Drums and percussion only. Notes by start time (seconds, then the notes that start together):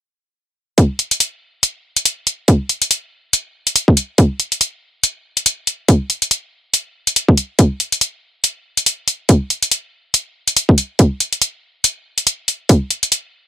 0.78 kick, closed hi-hat
0.99 closed hi-hat
1.11 closed hi-hat
1.20 closed hi-hat
1.63 closed hi-hat
1.97 closed hi-hat
2.05 closed hi-hat
2.27 closed hi-hat
2.48 kick, closed hi-hat
2.69 closed hi-hat
2.82 closed hi-hat
2.91 closed hi-hat
3.33 closed hi-hat
3.67 closed hi-hat
3.76 closed hi-hat
3.88 kick
3.97 closed hi-hat
4.18 kick, closed hi-hat
4.40 closed hi-hat
4.52 closed hi-hat
4.61 closed hi-hat
5.03 closed hi-hat
5.37 closed hi-hat
5.46 closed hi-hat
5.67 closed hi-hat
5.88 kick, closed hi-hat
6.10 closed hi-hat
6.22 closed hi-hat
6.31 closed hi-hat
6.74 closed hi-hat
7.07 closed hi-hat
7.16 closed hi-hat
7.29 kick
7.37 closed hi-hat
7.59 kick, closed hi-hat
7.80 closed hi-hat
7.92 closed hi-hat
8.01 closed hi-hat
8.44 closed hi-hat
8.77 closed hi-hat
8.86 closed hi-hat
9.08 closed hi-hat
9.29 kick, closed hi-hat
9.50 closed hi-hat
9.62 closed hi-hat
9.71 closed hi-hat
10.14 closed hi-hat
10.48 closed hi-hat
10.57 closed hi-hat
10.69 kick
10.78 closed hi-hat
10.99 kick, closed hi-hat
11.20 closed hi-hat
11.33 closed hi-hat
11.42 closed hi-hat
11.84 closed hi-hat
12.18 closed hi-hat
12.27 closed hi-hat
12.48 closed hi-hat
12.69 kick, closed hi-hat
12.91 closed hi-hat
13.03 closed hi-hat
13.12 closed hi-hat